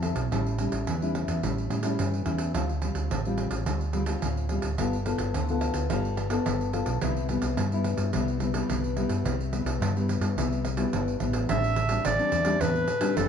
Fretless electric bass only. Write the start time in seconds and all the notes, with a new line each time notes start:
Already playing: F2
0.15 B1
0.31 A1
0.72 A1
0.87 E2
1.28 E2
1.43 A1
1.69 A2
1.99 G2
2.25 E2
2.54 D2
2.94 D2
3.10 A1
3.50 A1
3.66 D2
4.23 D2
4.63 D2
4.78 G1
5.18 G1
5.34 D2
5.74 D2
5.90 G1
6.46 G1
6.87 B1
7.02 C2
7.42 C2
7.57 G2
7.98 G2
8.14 C2
8.69 C2
9.09 G2
9.24 C2
9.65 C2
9.80 G2
10.21 G2
10.36 C2
10.93 G1
11.21 A1
11.50 A1
12.06 A1
12.32 E2
12.61 E2
13.17 F#1